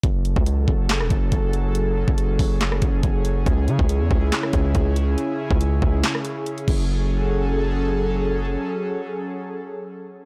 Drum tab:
CC |----------------|----------------|----------------|--------------x-|
HH |x-x-x---x-x-x-x-|x---x-o-x-x-x-x-|x-x-x---x-x-x-x-|x---x---x-x-xx--|
CP |--------x-------|--------x-------|--------x-------|--------x-------|
SD |--------or------|--------or------|--------or------|--------or------|
BD |o--o--o---o-o---|---o--o---o-o---|o--o--o---o-o---|---o--o-------o-|

CC |----------------|----------------|
HH |----------------|----------------|
CP |----------------|----------------|
SD |----------------|----------------|
BD |----------------|----------------|